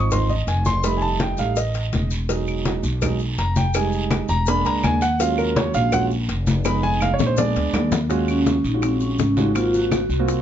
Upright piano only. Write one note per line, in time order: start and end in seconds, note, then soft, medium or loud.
0.00 0.10 F3 medium
0.00 0.11 C4 medium
0.00 0.11 D#4 medium
0.00 0.11 C#6 medium
0.12 0.28 F3 soft
0.12 0.28 C4 soft
0.12 0.29 D#4 medium
0.12 0.30 C6 medium
0.30 0.47 D#5 medium
0.48 0.66 G#5 medium
0.66 0.84 C6 loud
0.84 1.36 G3 medium
0.84 1.36 A3 medium
0.84 1.36 D#4 medium
0.84 1.02 B5 medium
0.97 1.00 G#5 medium
1.02 1.20 A5 medium
1.21 1.38 G5 medium
1.39 1.55 G3 medium
1.39 1.55 A3 soft
1.39 1.56 D#4 medium
1.39 1.57 F5 medium
1.57 2.08 D#5 medium
2.29 2.81 F#3 medium
2.29 2.81 G#3 soft
2.29 2.82 D#4 medium
3.02 3.18 F#3 medium
3.02 3.19 G#3 soft
3.02 3.19 D#4 medium
3.39 3.56 A#5 medium
3.57 3.75 G5 medium
3.75 4.27 G3 medium
3.75 4.27 G#3 medium
3.75 4.27 D#4 medium
3.75 4.26 G#5 medium
4.29 4.47 A#5 loud
4.47 4.99 G#3 medium
4.47 4.99 A#3 medium
4.47 5.00 D4 medium
4.47 4.65 B5 loud
4.66 4.83 A#5 loud
4.84 5.01 G#5 loud
5.02 5.19 F#5 loud
5.20 5.91 F#3 medium
5.20 5.91 G#3 soft
5.20 5.91 C#4 medium
5.20 5.91 F4 medium
5.20 5.38 F5 medium
5.38 5.56 A#4 medium
5.57 5.74 C#5 medium
5.75 5.92 F5 loud
5.92 6.09 F#3 medium
5.92 6.09 G#3 medium
5.92 6.09 C#4 medium
5.92 6.09 F4 medium
5.92 6.04 F#5 loud
6.65 7.34 G#3 medium
6.65 7.34 B3 medium
6.65 7.34 D#4 medium
6.65 6.83 B5 loud
6.83 7.01 G#5 loud
7.02 7.13 F5 loud
7.14 7.25 C#5 medium
7.26 7.38 C5 medium
7.37 7.89 G#3 medium
7.37 7.89 B3 medium
7.37 7.90 D4 medium
7.37 7.97 D5 loud
8.09 8.54 G#3 medium
8.09 8.54 C#4 medium
8.09 8.54 F4 medium
8.09 8.54 F#4 medium
8.74 9.18 G#3 medium
8.74 9.18 C#4 medium
8.74 9.18 F4 medium
8.74 9.18 F#4 medium
9.37 9.50 G#3 medium
9.37 9.50 C#4 medium
9.37 9.50 F4 medium
9.37 9.50 F#4 medium
9.55 10.00 A#3 medium
9.55 10.00 C4 medium
9.55 10.00 F4 medium
9.55 10.00 F#4 medium
10.19 10.42 A#3 medium
10.19 10.42 C4 medium
10.19 10.42 F4 medium
10.19 10.42 F#4 medium